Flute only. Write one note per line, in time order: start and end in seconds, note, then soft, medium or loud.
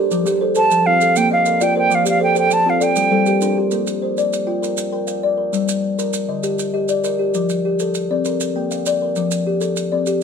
0.57 0.88 A5 loud
0.86 1.19 F5 medium
1.17 1.31 G5 loud
1.33 1.64 F5 medium
1.63 1.77 G5 medium
1.78 1.96 G5 loud
1.95 2.08 F5 medium
2.09 2.21 F5 medium
2.23 2.36 G5 medium
2.39 2.55 G5 medium
2.53 2.71 A5 medium
2.70 2.85 F5 medium
2.83 3.58 G5 medium